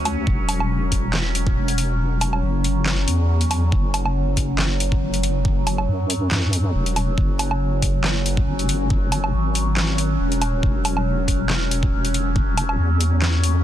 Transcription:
0.00 0.25 D2 loud
0.00 3.71 F#3 medium
0.00 3.71 C#4 medium
0.05 open hi-hat medium
0.05 low woodblock medium
0.27 1.55 E1 loud
0.27 kick loud
0.49 closed hi-hat medium
0.49 low woodblock medium
0.60 low woodblock medium
0.92 kick medium
0.92 closed hi-hat medium
1.13 snare loud
1.13 clap medium
1.35 closed hi-hat medium
1.47 kick loud
1.56 2.41 E1 medium
1.68 closed hi-hat soft
1.78 open hi-hat loud
2.21 closed hi-hat medium
2.21 low woodblock medium
2.33 low woodblock medium
2.43 3.06 F#1 loud
2.64 open hi-hat medium
2.86 snare loud
2.86 clap medium
3.08 3.71 E2 loud
3.08 closed hi-hat medium
3.41 closed hi-hat soft
3.51 open hi-hat loud
3.51 low woodblock medium
3.72 5.00 F#1 loud
3.72 13.64 F#3 medium
3.72 13.64 C#4 medium
3.72 kick loud
3.94 closed hi-hat medium
3.94 low woodblock medium
4.05 low woodblock medium
4.37 kick medium
4.37 closed hi-hat medium
4.59 snare loud
4.59 clap loud
4.80 closed hi-hat medium
4.92 kick loud
5.02 5.87 F#1 medium
5.14 closed hi-hat soft
5.23 open hi-hat medium
5.45 kick loud
5.67 closed hi-hat medium
5.67 low woodblock medium
5.78 low woodblock medium
5.88 6.73 F#2 medium
6.10 closed hi-hat medium
6.31 snare loud
6.31 clap loud
6.53 closed hi-hat medium
6.75 7.16 E1 medium
6.86 closed hi-hat soft
6.96 open hi-hat medium
6.96 low woodblock medium
7.18 8.46 F#1 medium
7.18 kick loud
7.39 closed hi-hat medium
7.39 low woodblock medium
7.51 low woodblock medium
7.82 kick medium
7.82 closed hi-hat medium
8.04 snare loud
8.04 clap medium
8.26 closed hi-hat medium
8.37 kick loud
8.47 9.32 F#1 loud
8.59 closed hi-hat soft
8.69 open hi-hat medium
8.90 kick loud
9.12 closed hi-hat medium
9.12 low woodblock medium
9.24 low woodblock medium
9.34 10.18 G#1 medium
9.55 closed hi-hat medium
9.77 snare loud
9.77 clap medium
9.98 closed hi-hat medium
10.20 10.62 E1 medium
10.32 closed hi-hat soft
10.42 open hi-hat medium
10.42 low woodblock medium
10.63 11.91 E1 loud
10.63 kick loud
10.85 closed hi-hat medium
10.85 low woodblock medium
10.97 low woodblock medium
11.28 kick medium
11.28 closed hi-hat medium
11.50 snare loud
11.50 clap medium
11.71 closed hi-hat medium
11.83 kick loud
11.93 12.77 E1 medium
12.05 closed hi-hat soft
12.14 open hi-hat medium
12.36 kick loud
12.57 closed hi-hat medium
12.57 low woodblock medium
12.69 low woodblock medium
12.79 13.64 E2 medium
13.01 closed hi-hat medium
13.22 snare loud
13.22 clap medium
13.44 closed hi-hat medium

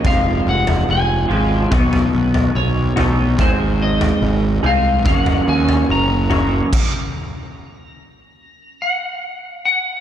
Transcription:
0.04 0.40 F1 medium
0.04 1.27 F2 medium
0.04 1.27 C3 medium
0.04 1.28 F3 medium
0.04 1.28 G#3 medium
0.04 1.28 C4 medium
0.04 1.27 F4 medium
0.04 0.48 F5 medium
0.04 kick loud
0.04 floor tom medium
0.47 0.82 F1 medium
0.47 0.87 F#5 medium
0.67 floor tom medium
0.89 1.24 F1 medium
0.89 2.11 G#5 medium
1.28 1.65 G#1 medium
1.28 1.70 F2 medium
1.28 1.70 C3 medium
1.28 1.70 F3 medium
1.28 1.69 G#3 medium
1.28 1.69 C4 medium
1.28 1.68 F4 medium
1.71 2.07 B1 medium
1.71 2.94 B2 medium
1.71 2.95 F#3 medium
1.71 2.95 B3 medium
1.71 2.95 D#4 medium
1.71 2.95 F#4 medium
1.71 kick loud
1.71 floor tom medium
1.93 floor tom medium
2.13 2.49 B1 medium
2.34 floor tom medium
2.55 2.91 B1 medium
2.55 3.40 C#5 medium
2.96 3.39 B1 medium
2.96 3.37 B2 medium
2.96 3.37 F#3 medium
2.96 3.37 B3 medium
2.96 3.36 D#4 medium
2.96 3.36 F#4 medium
2.96 floor tom medium
3.39 4.10 G#1 medium
3.39 4.61 G#2 medium
3.39 4.62 D#3 medium
3.39 4.62 G#3 medium
3.39 4.62 C4 medium
3.39 4.63 D#4 medium
3.39 4.62 G#4 loud
3.39 3.82 C5 medium
3.39 kick loud
3.39 floor tom medium
3.82 4.67 D#5 medium
4.01 floor tom medium
4.22 4.57 G#1 medium
4.63 5.06 C2 medium
4.63 5.04 G#2 medium
4.63 5.04 D#3 medium
4.63 5.04 G#3 medium
4.63 5.03 C4 medium
4.63 5.03 D#4 medium
4.63 5.03 G#4 medium
4.63 5.06 F5 medium
5.05 5.41 F#1 medium
5.05 6.28 F#2 medium
5.05 6.28 C#3 medium
5.05 6.29 F#3 medium
5.05 6.29 A#3 medium
5.05 6.29 C#4 medium
5.05 6.29 F#4 medium
5.05 5.18 F5 loud
5.05 kick loud
5.05 floor tom medium
5.18 5.49 F#5 loud
5.26 floor tom medium
5.48 5.83 D#2 medium
5.48 5.91 G#5 medium
5.69 floor tom medium
5.89 6.60 F#1 medium
5.89 9.20 A#5 medium
6.30 6.71 F#2 medium
6.30 6.71 C#3 medium
6.30 6.70 F#3 medium
6.30 6.70 A#3 medium
6.30 6.70 C#4 medium
6.30 6.70 F#4 medium
6.30 floor tom medium
6.73 kick loud
6.73 crash medium
8.82 9.64 F#5 medium
9.65 10.00 F#5 medium

